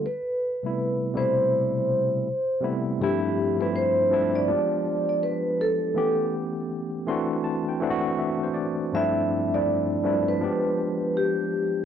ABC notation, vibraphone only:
X:1
M:4/4
L:1/16
Q:"Swing 16ths" 1/4=81
K:Gmix
V:1 name="Vibraphone"
B6 c8 z2 | G3 B c3 d4 d B2 A2- | A2 z12 z2 | e3 d4 B4- B G4 |]